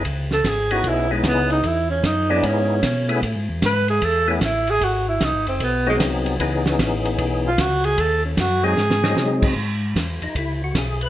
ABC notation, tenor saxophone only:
X:1
M:4/4
L:1/16
Q:"Swing" 1/4=151
K:C#m
V:1 name="Tenor saxophone"
z2 A2 G2 F2 E2 G,2 B,2 D2 | E2 C2 D2 =D2 C8 | z4 B2 G2 A2 C2 E2 G2 | F2 E2 D2 ^B,2 =B,2 G,2 z4 |
z8 z2 ^E2 F2 G2 | A2 C2 F2 G8- G z | z16 |]